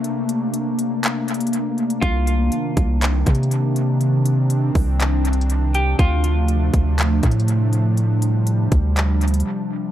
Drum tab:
HH |x-----------x-----------x-----------x-----------x-----------x--x--x--x--x-----------x-----x-----|x-----------x-----------x-----------x-----------x-----------x---x---x---x-----------x-----------|x-----------x-----------x-----------o-----------x-----------x---x---x---x-----------x-----------|x-----------x-----------x-----------x-----------x-----------x---x---x---x-----------x-----------|
CP |------------------------------------------------x-----------------------------------------------|------------------------------------------------x-----------------------------------------------|------------------------------------------------x-----------------------------------------------|------------------------------------------------x-----------------------------------------------|
BD |------------------------------------------------------------------------------------------------|o-----------------------------------o-----------------------o-----------------------------------|------------------------------------o-----------------------------------------------------------|o-----------------------------------o-----------------------o-----------------------------------|

HH |x-----------x-----------x-----------x-----------x-----------x--x--x--x--------------------------|
CP |------------------------------------------------x-----------------------------------------------|
BD |------------------------------------o-----------------------------------------------------------|